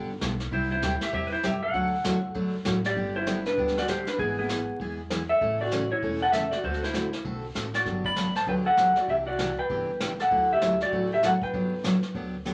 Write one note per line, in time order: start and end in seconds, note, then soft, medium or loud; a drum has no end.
0.00 0.20 G1 medium
0.00 0.11 D3 medium
0.00 0.11 G3 medium
0.00 0.11 B3 medium
0.00 0.11 D4 medium
0.00 0.11 G4 medium
0.21 0.51 B1 loud
0.21 0.33 D3 medium
0.21 0.32 G3 medium
0.21 0.33 B3 medium
0.21 0.33 D4 medium
0.21 0.33 G4 medium
0.21 snare medium
0.21 hi-hat pedal medium
0.40 snare soft
0.51 0.81 C2 loud
0.51 0.72 C3 medium
0.51 0.72 G3 soft
0.51 0.72 C4 medium
0.51 0.70 E4 medium
0.51 0.73 E4 medium
0.51 0.73 G4 medium
0.51 0.71 C5 medium
0.51 brush sweep soft
0.51 kick soft
0.71 1.00 E4 medium
0.71 1.03 C5 loud
0.82 1.00 D2 loud
0.82 0.93 C3 medium
0.82 0.94 G3 medium
0.82 0.94 C4 medium
0.82 0.94 E4 medium
0.82 0.94 G4 loud
0.82 snare medium
0.82 hi-hat pedal medium
1.01 1.13 G4 medium
1.01 1.14 E5 medium
1.01 snare medium
1.12 1.43 E2 medium
1.12 1.33 C3 medium
1.12 1.33 G3 medium
1.12 1.33 C4 medium
1.12 1.33 E4 medium
1.12 1.33 G4 medium
1.12 1.27 G4 medium
1.12 1.29 E5 medium
1.12 brush sweep medium
1.12 kick soft
1.27 1.32 B4 medium
1.32 1.43 E4 medium
1.32 1.44 C5 loud
1.43 1.73 F#2 loud
1.43 1.55 C3 medium
1.43 1.55 G3 medium
1.43 1.55 C4 medium
1.43 1.55 E4 medium
1.43 1.55 G4 medium
1.43 1.62 G4 medium
1.43 1.62 E5 loud
1.43 snare medium
1.43 hi-hat pedal medium
1.63 2.81 A4 medium
1.63 2.81 F#5 medium
1.74 2.04 D2 medium
1.74 1.94 D3 medium
1.74 1.94 F#3 medium
1.74 1.94 A3 medium
1.74 1.94 D4 medium
1.74 1.95 F#4 medium
1.74 brush sweep soft
1.74 kick soft
2.04 2.34 E2 medium
2.04 2.16 D3 medium
2.04 2.16 F#3 medium
2.04 2.16 A3 medium
2.04 2.16 D4 medium
2.04 2.16 F#4 medium
2.04 snare medium
2.04 hi-hat pedal medium
2.35 2.65 F#2 medium
2.35 2.55 D3 medium
2.35 2.55 F#3 medium
2.35 2.55 A3 medium
2.35 2.56 D4 medium
2.35 2.56 F#4 medium
2.35 brush sweep medium
2.35 kick soft
2.65 2.95 A2 medium
2.65 2.77 D3 medium
2.65 2.77 F#3 medium
2.65 2.77 A3 medium
2.65 2.77 D4 medium
2.65 2.77 F#4 medium
2.65 snare medium
2.65 hi-hat pedal medium
2.84 3.14 G4 medium
2.84 3.16 D5 loud
2.84 snare soft
2.96 3.45 G1 medium
2.96 3.16 D3 medium
2.96 3.17 G3 medium
2.96 3.17 B3 medium
2.96 3.17 D4 soft
2.96 3.17 G4 medium
2.96 brush sweep soft
2.96 kick soft
3.16 3.44 E4 medium
3.16 3.46 C5 loud
3.27 3.38 D3 medium
3.27 3.38 G3 medium
3.27 3.38 B3 medium
3.27 3.38 D4 medium
3.27 3.39 G4 medium
3.27 snare medium
3.27 hi-hat pedal medium
3.46 3.75 D4 medium
3.46 3.78 B4 loud
3.46 snare soft
3.57 4.06 D2 medium
3.57 3.78 D3 soft
3.57 3.78 G3 soft
3.57 3.78 B3 medium
3.57 3.78 D4 medium
3.57 3.78 G4 medium
3.57 brush sweep soft
3.57 kick soft
3.68 snare soft
3.77 3.88 F#4 medium
3.77 3.89 D5 loud
3.77 snare soft
3.88 3.99 D3 medium
3.88 3.99 G3 medium
3.88 3.99 B3 medium
3.88 4.00 D4 medium
3.88 4.00 G4 medium
3.88 4.06 G4 medium
3.88 4.08 C5 medium
3.88 snare medium
3.88 hi-hat pedal medium
4.06 4.19 D4 medium
4.06 4.19 B4 medium
4.06 snare soft
4.18 4.68 G#1 loud
4.18 4.39 E3 medium
4.18 4.39 G#3 medium
4.18 4.39 B3 medium
4.18 4.36 B3 medium
4.18 4.39 E4 soft
4.18 4.37 G#4 medium
4.18 4.39 G#4 medium
4.18 brush sweep soft
4.18 kick soft
4.39 4.78 B3 medium
4.39 4.78 G#4 medium
4.49 4.60 E3 medium
4.49 4.61 G#3 medium
4.49 4.61 B3 medium
4.49 4.61 E4 medium
4.49 4.61 G#4 medium
4.49 snare medium
4.49 hi-hat pedal medium
4.80 5.29 E2 medium
4.80 5.01 E3 medium
4.80 5.01 G#3 medium
4.80 5.01 B3 medium
4.80 5.01 E4 medium
4.80 5.01 G#4 medium
4.80 brush sweep soft
4.80 kick soft
5.10 5.22 E3 medium
5.10 5.22 G#3 medium
5.10 5.22 B3 medium
5.10 5.22 E4 medium
5.10 5.22 G#4 medium
5.10 snare medium
5.10 hi-hat pedal medium
5.29 5.58 A4 medium
5.29 5.61 E5 medium
5.41 5.90 A1 loud
5.41 5.61 C#3 medium
5.41 5.61 E3 medium
5.41 5.62 A3 medium
5.41 5.62 C#4 medium
5.41 5.62 A4 medium
5.41 brush sweep medium
5.41 kick soft
5.61 5.89 F#4 medium
5.61 5.89 D5 medium
5.71 5.83 C#3 medium
5.71 5.83 E3 medium
5.71 5.83 A3 medium
5.71 5.83 C#4 medium
5.71 5.83 A4 medium
5.71 snare medium
5.71 hi-hat pedal medium
5.92 6.20 E4 medium
5.92 6.20 C#5 medium
6.02 6.51 E1 medium
6.02 6.22 C#3 medium
6.02 6.23 E3 medium
6.02 6.23 A3 medium
6.02 6.23 C#4 medium
6.02 6.23 A4 medium
6.02 brush sweep medium
6.02 kick soft
6.22 6.32 A4 medium
6.22 6.32 F#5 loud
6.32 6.44 C#3 medium
6.32 6.44 E3 medium
6.32 6.44 A3 medium
6.32 6.44 C#4 medium
6.32 6.51 A4 medium
6.32 6.44 A4 medium
6.32 6.51 E5 medium
6.32 snare medium
6.32 hi-hat pedal medium
6.51 6.63 F#4 medium
6.51 6.63 D5 medium
6.51 snare soft
6.63 7.12 D2 loud
6.63 6.84 D3 medium
6.63 6.84 A3 soft
6.63 6.84 C4 soft
6.63 6.84 F#4 medium
6.63 6.82 F#4 medium
6.63 6.84 A4 medium
6.63 6.82 C5 medium
6.63 brush sweep soft
6.63 kick soft
6.74 snare soft
6.83 7.23 E4 medium
6.83 7.22 C5 medium
6.83 snare soft
6.93 7.05 D3 medium
6.93 7.05 A3 medium
6.93 7.05 C4 medium
6.93 7.05 F#4 medium
6.93 7.05 A4 medium
6.93 snare medium
6.93 hi-hat pedal medium
7.13 snare soft
7.25 7.51 B1 medium
7.25 7.45 D3 medium
7.25 7.45 A3 medium
7.25 7.45 C4 medium
7.25 7.45 F#4 medium
7.25 7.45 A4 medium
7.25 brush sweep medium
7.25 kick soft
7.54 7.81 A1 medium
7.54 7.66 D3 medium
7.54 7.66 A3 medium
7.54 7.66 C4 medium
7.54 7.67 F#4 medium
7.54 7.67 A4 medium
7.54 snare medium
7.54 hi-hat pedal medium
7.74 8.03 F#4 medium
7.74 8.04 D5 medium
7.74 snare soft
7.85 8.35 G1 loud
7.85 8.06 D3 soft
7.85 8.06 F#3 soft
7.85 8.06 B3 medium
7.85 8.06 D4 medium
7.85 8.06 G4 medium
7.85 brush sweep soft
7.85 kick soft
7.85 snare soft
8.04 8.34 D5 medium
8.04 8.36 B5 loud
8.04 kick medium
8.16 8.28 D3 medium
8.16 8.28 F#3 medium
8.16 8.28 B3 medium
8.16 8.28 D4 medium
8.16 8.28 G4 medium
8.16 snare medium
8.16 hi-hat pedal medium
8.35 8.47 C5 medium
8.35 8.48 A5 medium
8.35 snare soft
8.47 8.96 D2 medium
8.47 8.67 D3 medium
8.47 8.67 F#3 medium
8.47 8.67 B3 medium
8.47 8.67 D4 medium
8.47 8.68 G4 medium
8.47 8.54 B4 medium
8.47 8.54 G5 medium
8.47 brush sweep soft
8.47 kick soft
8.66 8.94 A4 medium
8.66 8.98 F#5 loud
8.77 8.89 D3 medium
8.77 8.89 F#3 medium
8.77 8.89 B3 medium
8.77 8.89 D4 medium
8.77 8.89 G4 medium
8.77 snare medium
8.77 hi-hat pedal medium
8.96 9.07 F#4 medium
8.96 9.09 D5 medium
8.96 snare soft
9.08 9.57 C2 medium
9.08 9.29 C3 medium
9.08 9.29 E3 soft
9.08 9.29 D4 medium
9.08 9.29 G4 medium
9.08 9.15 G4 medium
9.08 9.15 E5 medium
9.08 brush sweep soft
9.08 kick soft
9.27 9.55 F#4 medium
9.27 9.59 D5 loud
9.39 9.50 C3 medium
9.39 9.50 E3 medium
9.39 9.50 D4 medium
9.39 9.51 G4 medium
9.39 snare medium
9.39 hi-hat pedal medium
9.58 10.15 B4 medium
9.58 10.21 G5 medium
9.69 10.19 G1 medium
9.69 9.90 C3 medium
9.69 9.90 E3 medium
9.69 9.90 D4 medium
9.69 9.90 G4 medium
9.69 brush sweep soft
9.69 kick soft
10.00 10.11 C3 medium
10.00 10.11 E3 medium
10.00 10.12 D4 medium
10.00 10.12 G4 medium
10.00 snare medium
10.00 hi-hat pedal medium
10.19 10.48 A4 medium
10.19 10.52 F#5 medium
10.19 snare soft
10.31 10.80 D2 loud
10.31 10.51 D3 medium
10.31 10.51 F#3 medium
10.31 10.51 A3 medium
10.31 10.51 E4 medium
10.31 10.51 F#4 medium
10.31 brush sweep soft
10.31 kick soft
10.52 10.79 G4 medium
10.52 10.80 E5 loud
10.61 10.72 D3 medium
10.61 10.72 F#3 medium
10.61 10.73 A3 medium
10.61 10.73 E4 medium
10.61 10.73 F#4 loud
10.61 snare medium
10.61 hi-hat pedal medium
10.80 11.10 F#4 medium
10.80 11.10 D5 medium
10.80 snare soft
10.92 11.41 A1 medium
10.92 11.12 D3 medium
10.92 11.12 F#3 medium
10.92 11.12 A3 medium
10.92 11.13 E4 medium
10.92 11.13 F#4 medium
10.92 brush sweep soft
10.92 kick soft
11.13 11.23 G4 medium
11.13 11.24 E5 medium
11.23 11.34 D3 medium
11.23 11.34 F#3 medium
11.23 11.34 A3 medium
11.23 11.34 E4 medium
11.23 11.34 F#4 medium
11.23 11.30 A4 medium
11.23 11.30 F#5 medium
11.23 snare medium
11.23 hi-hat pedal medium
11.42 12.42 B4 medium
11.42 12.42 G5 medium
11.42 kick medium
11.53 12.02 G1 medium
11.53 11.73 D3 medium
11.53 11.74 F#3 medium
11.53 11.74 B3 medium
11.53 11.74 D4 medium
11.53 11.74 G4 medium
11.53 brush sweep soft
11.53 kick soft
11.84 11.95 D3 medium
11.84 11.95 F#3 medium
11.84 11.95 B3 medium
11.84 11.95 D4 medium
11.84 11.95 G4 loud
11.84 snare medium
11.84 hi-hat pedal medium
12.03 snare soft
12.14 12.54 D2 medium
12.14 12.35 D3 medium
12.14 12.35 F#3 medium
12.14 12.35 B3 medium
12.14 12.35 D4 medium
12.14 12.35 G4 medium
12.14 brush sweep soft
12.14 kick soft
12.45 12.54 D3 medium
12.45 12.54 F#3 medium
12.45 12.54 B3 medium
12.45 12.54 D4 medium
12.45 12.54 G4 medium
12.45 hi-hat pedal medium